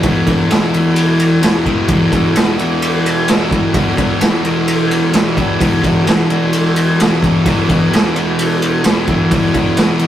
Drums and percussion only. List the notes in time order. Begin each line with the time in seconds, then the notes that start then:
0.03 kick, ride
0.27 kick, ride
0.51 snare, ride
0.74 ride
0.96 ride
1.19 ride
1.43 snare, ride
1.66 kick, ride
1.88 kick, ride
2.12 kick, ride
2.36 snare, ride
2.59 ride
2.82 ride
3.06 ride
3.28 snare, ride
3.51 kick, ride
3.74 kick, ride
3.97 kick, ride
4.21 snare, ride
4.45 ride
4.68 ride
4.91 ride
5.13 snare, ride
5.37 kick, ride
5.61 kick, ride
5.84 kick, ride
6.07 snare, ride
6.30 ride
6.53 ride
6.76 ride
7.00 snare, ride
7.23 kick, ride
7.46 kick, ride
7.69 kick, ride
7.93 snare, ride
8.16 ride
8.39 ride
8.62 ride
8.84 snare, ride
9.07 kick, ride
9.31 kick, ride
9.54 kick, ride
9.77 snare, ride
9.99 ride